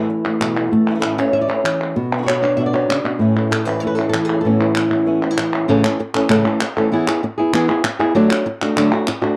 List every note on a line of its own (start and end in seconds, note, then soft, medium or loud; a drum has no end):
0.00 1.18 E3 medium
0.00 0.25 A3 soft
0.00 0.72 E4 medium
0.10 muted nylon-string guitar stroke soft
0.26 0.70 A3 soft
0.40 0.71 B2 soft
0.40 0.56 E3 soft
0.40 0.56 A3 soft
0.40 0.56 B3 soft
0.40 0.55 E4 soft
0.40 clap medium
0.57 0.72 E3 soft
0.57 0.72 A3 soft
0.57 0.71 B3 soft
0.57 0.71 E4 soft
0.57 clap soft
0.72 1.94 A3 medium
0.72 1.01 A4 soft
0.72 muted nylon-string guitar stroke medium
0.88 0.94 E3 soft
0.88 0.94 A3 soft
0.88 0.94 C#4 soft
0.88 0.95 E4 soft
0.88 1.32 E5 soft
0.95 0.98 E3 soft
0.95 0.98 A3 soft
0.95 0.99 C#4 soft
0.95 0.99 E4 medium
0.99 1.03 E3 medium
0.99 1.03 A3 medium
0.99 1.03 C#4 medium
0.99 1.04 E4 medium
0.99 1.18 B4 medium
0.99 clap medium
1.04 1.18 A2 medium
1.04 1.18 E3 medium
1.04 1.18 A3 medium
1.04 1.18 C#4 medium
1.04 1.17 E4 medium
1.18 1.34 A3 soft
1.18 1.94 C#4 soft
1.18 1.34 C#4 soft
1.18 1.33 E4 soft
1.18 1.47 C#5 medium
1.33 1.49 A2 medium
1.33 1.49 E3 medium
1.33 1.49 A3 medium
1.33 1.49 C#4 medium
1.33 1.48 E4 medium
1.33 1.41 E5 medium
1.41 1.49 D5 medium
1.49 1.64 A3 soft
1.49 1.64 C#4 soft
1.49 1.64 E4 soft
1.49 1.96 C#5 medium
1.64 1.94 E3 medium
1.64 muted nylon-string guitar stroke soft
1.64 clap medium
1.81 clap soft
1.96 2.88 B2 medium
1.96 3.19 F#4 soft
1.96 muted nylon-string guitar stroke medium
2.12 2.26 B4 soft
2.18 2.21 D3 soft
2.18 2.22 B3 soft
2.18 2.22 D4 soft
2.18 2.22 F#4 soft
2.22 2.26 D3 medium
2.22 2.26 B3 medium
2.22 2.27 D4 medium
2.22 2.27 F#4 medium
2.26 2.42 B2 medium
2.26 2.42 D3 medium
2.26 2.42 B3 medium
2.26 2.42 D4 medium
2.26 2.41 F#4 medium
2.26 2.72 C#5 medium
2.26 clap medium
2.42 2.57 B3 soft
2.42 3.18 D4 medium
2.42 2.57 D4 soft
2.42 2.57 F#4 soft
2.42 2.56 D5 medium
2.42 clap soft
2.57 2.73 B2 medium
2.57 2.73 D3 medium
2.57 2.73 B3 medium
2.57 2.73 D4 medium
2.57 2.72 F#4 medium
2.57 2.65 E5 medium
2.66 3.05 D5 medium
2.73 2.89 B3 soft
2.73 2.89 D4 soft
2.73 2.88 F#4 soft
2.73 3.20 C#5 medium
2.89 3.04 C#3 soft
2.89 muted nylon-string guitar stroke soft
2.89 clap medium
3.04 3.20 B2 medium
3.04 clap soft
3.19 4.44 A2 medium
3.19 3.35 A2 medium
3.19 3.36 E3 medium
3.19 3.36 A3 medium
3.19 4.45 C#4 soft
3.19 3.35 C#4 medium
3.19 3.35 E4 medium
3.36 3.51 A3 soft
3.36 3.51 C#4 soft
3.36 3.51 E4 soft
3.36 4.25 E4 soft
3.51 3.65 A4 medium
3.51 muted nylon-string guitar stroke medium
3.51 clap medium
3.65 4.14 E3 soft
3.65 3.82 A3 soft
3.65 3.82 C#4 soft
3.65 3.82 E4 soft
3.65 3.80 B4 medium
3.80 3.97 A2 medium
3.80 3.98 E3 medium
3.80 3.98 A3 medium
3.80 3.98 C#4 medium
3.80 3.97 E4 medium
3.80 3.86 C#5 medium
3.87 3.95 B4 medium
3.95 4.13 E4 soft
3.95 4.08 A4 medium
3.99 4.13 A3 soft
3.99 4.13 C#4 soft
4.09 4.40 A4 medium
4.14 4.45 E3 medium
4.14 muted nylon-string guitar stroke soft
4.14 clap medium
4.25 4.42 G#4 medium
4.29 4.45 A3 soft
4.29 4.44 C#4 soft
4.29 4.44 E4 soft
4.29 clap soft
4.41 5.66 A2 medium
4.41 5.67 A4 medium
4.45 4.60 A2 medium
4.45 4.89 E3 soft
4.45 4.60 E3 medium
4.45 4.60 B3 medium
4.45 5.21 C#4 soft
4.45 4.60 C#4 medium
4.45 4.59 E4 soft
4.45 4.60 E4 medium
4.60 4.76 B3 soft
4.60 4.76 C#4 soft
4.60 5.22 E4 soft
4.60 4.75 E4 soft
4.75 muted nylon-string guitar stroke soft
4.75 clap medium
4.91 5.37 E3 medium
4.91 5.06 B3 soft
4.91 5.06 C#4 soft
4.91 5.06 E4 soft
4.91 clap soft
5.06 5.21 A2 medium
5.06 5.21 E3 medium
5.06 5.22 B3 medium
5.06 5.21 C#4 medium
5.06 5.20 E4 medium
5.21 5.36 B3 soft
5.21 5.36 C#4 soft
5.21 5.31 C#4 soft
5.21 5.36 E4 soft
5.31 5.69 E4 soft
5.37 5.67 E3 soft
5.37 muted nylon-string guitar stroke soft
5.37 clap medium
5.53 5.69 B3 soft
5.53 5.68 C#4 soft
5.53 5.68 E4 soft
5.53 clap soft
5.68 5.83 A2 medium
5.68 5.84 C#3 medium
5.68 5.84 E3 medium
5.68 5.84 A3 medium
5.68 5.83 C#4 loud
5.68 5.83 A4 medium
5.84 5.99 E3 soft
5.84 5.99 A3 soft
5.84 5.99 C#4 soft
5.84 5.99 A4 soft
5.84 clap medium
5.99 muted nylon-string guitar stroke medium
6.14 6.29 E3 soft
6.14 6.29 A3 soft
6.14 6.29 C#4 medium
6.14 6.29 A4 medium
6.14 clap medium
6.29 6.45 A2 medium
6.29 6.45 C#3 medium
6.29 6.45 E3 medium
6.29 6.45 A3 medium
6.29 6.45 C#4 medium
6.29 6.43 A4 medium
6.29 clap medium
6.45 6.61 E3 medium
6.45 6.61 A3 soft
6.45 6.61 C#4 soft
6.45 6.60 A4 medium
6.45 clap soft
6.61 muted nylon-string guitar stroke medium
6.61 clap medium
6.77 6.90 E3 soft
6.77 6.92 A3 soft
6.77 6.92 C#4 medium
6.77 6.92 A4 medium
6.77 clap soft
6.92 7.07 E3 medium
6.92 7.07 B3 medium
6.92 7.08 E4 medium
6.92 7.06 G#4 medium
7.07 7.23 B3 soft
7.07 7.23 E4 soft
7.07 7.22 G#4 soft
7.07 clap medium
7.23 muted nylon-string guitar stroke medium
7.38 7.53 B3 soft
7.38 7.54 E4 medium
7.38 7.53 G#4 medium
7.53 7.68 E3 medium
7.53 7.69 B3 medium
7.53 7.68 E4 medium
7.53 7.67 G#4 medium
7.53 clap medium
7.68 7.83 B3 soft
7.68 7.83 E4 soft
7.68 7.84 G#4 medium
7.68 clap medium
7.84 muted nylon-string guitar stroke medium
7.84 clap medium
7.99 8.15 B3 medium
7.99 8.15 E4 medium
7.99 8.14 G#4 medium
7.99 clap soft
8.15 8.30 D3 medium
8.15 8.30 F#3 medium
8.15 8.30 A3 medium
8.15 8.30 D4 medium
8.15 8.29 F#4 medium
8.30 8.45 A3 soft
8.30 8.45 D4 soft
8.30 8.45 F#4 medium
8.30 clap medium
8.46 muted nylon-string guitar stroke medium
8.62 8.76 A3 soft
8.62 8.77 D4 medium
8.62 8.76 F#4 medium
8.62 clap medium
8.76 8.91 D3 medium
8.76 8.92 F#3 medium
8.76 8.92 A3 medium
8.76 8.92 D4 medium
8.76 8.91 F#4 medium
8.76 clap medium
8.92 9.07 A3 soft
8.92 9.07 D4 soft
8.92 9.07 F#4 medium
8.92 clap soft
9.07 muted nylon-string guitar stroke medium
9.07 clap medium
9.22 9.37 A3 soft
9.22 9.37 D4 medium
9.22 9.37 F#4 medium
9.22 clap soft